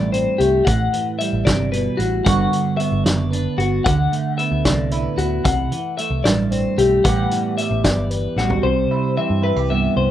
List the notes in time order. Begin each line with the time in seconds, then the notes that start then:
Already playing: A1 G2 E3 A3 C4 E4 D5
0.12 C4 C5, closed hi-hat
0.38 C2 A3 G4, closed hi-hat
0.65 A1 A2 F#5, kick, closed hi-hat
0.93 E3, closed hi-hat
1.19 G3 E5, closed hi-hat
1.33 A1
1.45 G1 C3 D5, kick, snare, closed hi-hat
1.72 B2 B4, closed hi-hat
1.97 A1 A2 F#4, closed hi-hat
2.25 G1 G2 D3 B3 D4 F#4 F#5, kick, closed hi-hat
2.53 D3, closed hi-hat
2.77 B3 E5, closed hi-hat
2.92 G1
3.04 F#1 D5, snare, closed hi-hat
3.31 D4 B4, closed hi-hat
3.58 G1 B3 F#4, closed hi-hat
3.84 D2 D3 F#5, kick, closed hi-hat
4.12 A3, closed hi-hat
4.38 B3 E5, closed hi-hat
4.52 D2
4.65 C2 A2 D5, kick, snare, closed hi-hat
4.91 E4 B4, closed hi-hat
5.18 D2 B3 F#4, closed hi-hat
5.44 C2 C3 F#5, kick, closed hi-hat
5.72 E3, closed hi-hat
5.98 A3 E5, closed hi-hat
6.10 C2
6.24 A1 G2 D5, snare, closed hi-hat
6.51 C4 C5, closed hi-hat
6.78 B1 A3 G4, closed hi-hat
7.04 A1 A2 E3 G3 B3 G4 F#5, kick, closed hi-hat
7.31 E3, closed hi-hat
7.58 G3 E5, closed hi-hat
7.71 A1
7.84 G1 E2 D5, kick, snare, closed hi-hat
8.11 B4, closed hi-hat
8.36 A1 G3 F#4, snare
8.50 floor tom
8.63 C2 C3 C5
8.91 E4
9.17 E3 C4 E5
9.30 G2
9.42 E4 B4
9.56 C2 G4
9.70 G2 B3 E5
9.96 C2 C5